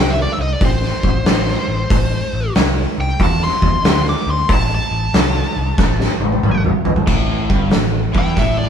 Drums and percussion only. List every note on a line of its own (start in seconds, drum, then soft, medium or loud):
0.61 kick loud
0.61 open hi-hat medium
0.83 snare soft
1.03 kick medium
1.26 snare loud
1.26 open hi-hat medium
1.48 snare soft
1.90 kick loud
1.90 open hi-hat medium
2.55 snare loud
2.55 open hi-hat medium
3.20 kick loud
3.20 open hi-hat medium
3.42 snare soft
3.62 kick medium
3.85 snare loud
3.85 open hi-hat medium
4.06 snare soft
4.49 kick loud
4.49 open hi-hat medium
5.14 snare loud
5.14 open hi-hat medium
5.78 kick loud
5.78 snare medium
6.00 snare medium
6.21 high tom medium
6.32 high tom medium
6.43 mid tom medium
6.64 mid tom medium
6.85 floor tom loud
6.96 floor tom medium
7.07 kick medium
7.07 crash medium
7.50 kick medium
7.71 snare loud
7.71 open hi-hat soft
8.15 kick loud
8.37 kick medium
8.37 open hi-hat soft